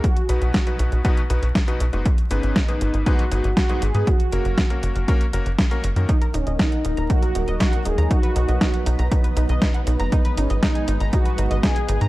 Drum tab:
HH |xxxxxxxxxxxxxxxx|xxxxxxxxxxxxxxxx|xxxxxxxxxxxxxxxx|xxxxxxxxxxxxxxxx|
SD |----o-------o---|----o-------o---|----o-------o---|----o-------o---|
BD |o---o---o---o---|o---o---o---o---|o---o---o---o---|o---o---o---o---|

HH |xxxxxxxxxxxxxxxx|xxxxxxxxxxxxxxxx|
SD |----o-------o---|----o-------o---|
BD |o---o---o---o---|o---o---o---o---|